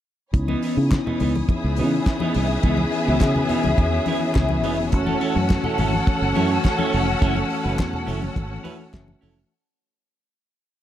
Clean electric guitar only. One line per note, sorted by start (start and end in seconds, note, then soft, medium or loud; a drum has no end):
0.34 muted clean electric guitar stroke soft
0.48 0.62 E3 medium
0.48 0.63 B3 medium
0.48 0.63 D#4 medium
0.63 0.77 E3 medium
0.63 0.77 B3 medium
0.63 0.76 D#4 medium
0.77 muted clean electric guitar stroke medium
0.91 muted clean electric guitar stroke soft
1.06 1.20 E3 medium
1.06 1.21 B3 medium
1.06 1.21 D#4 medium
1.21 1.35 E3 medium
1.21 1.35 B3 medium
1.21 1.34 D#4 medium
1.35 muted clean electric guitar stroke medium
1.64 muted clean electric guitar stroke soft
1.79 1.96 E3 medium
1.79 1.93 B3 medium
1.79 1.91 D#4 medium
1.93 muted clean electric guitar stroke soft
2.21 2.34 E3 medium
2.21 2.35 B3 medium
2.21 2.35 D#4 medium
2.35 2.49 E3 medium
2.35 2.49 B3 medium
2.35 2.49 D#4 medium
2.50 muted clean electric guitar stroke soft
2.63 2.81 E3 medium
2.63 2.78 B3 medium
2.63 2.77 D#4 medium
2.79 muted clean electric guitar stroke soft
2.92 muted clean electric guitar stroke soft
3.08 3.21 E3 medium
3.08 3.21 B3 medium
3.08 3.21 E4 medium
3.22 muted clean electric guitar stroke soft
3.35 muted clean electric guitar stroke soft
3.49 3.67 E3 medium
3.49 3.64 B3 medium
3.49 3.63 D#4 medium
3.64 muted clean electric guitar stroke soft
3.92 muted clean electric guitar stroke soft
4.07 4.25 E3 medium
4.07 4.21 B3 medium
4.07 4.21 E4 medium
4.21 muted clean electric guitar stroke soft
4.50 muted clean electric guitar stroke soft
4.64 4.81 E3 medium
4.64 4.78 B3 medium
4.64 4.77 D#4 medium
4.78 muted clean electric guitar stroke soft
4.92 muted clean electric guitar stroke soft
5.06 5.19 C#4 medium
5.06 5.20 E4 medium
5.06 5.20 A4 medium
5.20 5.35 C#4 medium
5.20 5.35 E4 medium
5.20 5.34 A4 medium
5.35 muted clean electric guitar stroke soft
5.50 muted clean electric guitar stroke soft
5.64 5.77 C#4 medium
5.64 5.78 E4 medium
5.64 5.79 A4 medium
5.78 5.92 C#4 medium
5.78 5.93 E4 medium
5.78 5.92 A4 medium
5.93 muted clean electric guitar stroke soft
6.21 muted clean electric guitar stroke soft
6.35 6.53 C#4 medium
6.35 6.50 E4 medium
6.35 6.49 A4 medium
6.50 muted clean electric guitar stroke medium
6.64 muted clean electric guitar stroke soft
6.78 6.91 C#4 medium
6.78 6.92 E4 medium
6.78 6.92 A4 medium
6.92 7.07 C#4 medium
6.92 7.06 E4 medium
6.92 7.05 A4 medium
7.07 muted clean electric guitar stroke soft
7.21 7.39 C#4 medium
7.21 7.36 E4 medium
7.21 7.35 A4 medium
7.36 muted clean electric guitar stroke soft
7.50 muted clean electric guitar stroke soft
7.64 7.77 C#4 medium
7.64 7.77 E4 medium
7.64 7.78 B4 medium
7.78 muted clean electric guitar stroke soft
7.92 muted clean electric guitar stroke soft
8.06 8.25 C#4 medium
8.06 8.20 E4 medium
8.06 8.19 A4 medium
8.21 muted clean electric guitar stroke medium
8.50 muted clean electric guitar stroke soft
8.63 8.82 C#4 medium
8.63 8.78 E4 medium
8.63 8.78 B4 loud
8.78 muted clean electric guitar stroke soft
9.07 muted clean electric guitar stroke soft
9.21 9.39 C#4 medium
9.21 9.36 E4 medium
9.21 9.35 A4 medium
9.37 muted clean electric guitar stroke soft